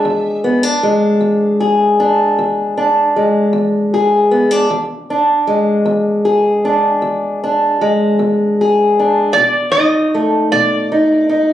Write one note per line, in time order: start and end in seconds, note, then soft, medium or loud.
0.00 0.66 G#3 medium
0.00 0.66 G#4 medium
0.00 0.38 E5 medium
0.05 0.74 E2 medium
0.44 0.63 B3 medium
0.63 1.98 D4 soft
0.83 3.15 G#3 medium
1.21 1.90 E2 medium
1.60 3.93 G#4 medium
2.00 2.76 D4 medium
2.39 3.07 E2 medium
2.77 4.31 D4 medium
3.16 4.66 G#3 soft
3.53 4.23 E2 medium
3.94 4.66 G#4 medium
4.31 4.51 B3 medium
4.51 4.70 D4 soft
4.70 5.40 E2 medium
5.10 6.64 D4 medium
5.47 7.80 G#3 medium
5.85 6.55 E2 medium
6.25 8.57 G#4 medium
6.65 7.42 D4 medium
7.02 7.72 E2 medium
7.44 8.97 D4 medium
7.81 9.31 G#3 medium
8.19 8.89 E2 medium
8.61 9.32 G#4 medium
8.99 9.32 D4 medium
9.33 10.05 B2 medium
9.33 9.70 D5 medium
9.72 10.51 D#5 loud
9.77 10.91 D#4 medium
10.15 11.53 A3 medium
10.52 11.21 B2 medium
10.52 11.53 D5 medium
10.92 11.28 D#4 medium
11.29 11.53 D#4 medium